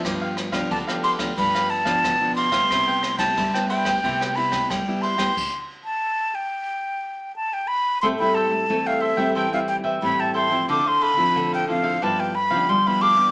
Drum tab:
CC |----------------|----------------|x---------------|----------------|
RD |x-xxx-xxx-xxx-xx|x-xxx-xxx-xxx-xx|----------------|----------------|
SD |r-rr-r-r-r-rr--r|r-rr-r-r-r-rr--r|----------------|----------------|
BD |o--oo--oo--oo--o|o--oo--oo--oo--o|o---------------|----------------|

CC |----------------|
RD |----------------|
SD |----------------|
BD |----------------|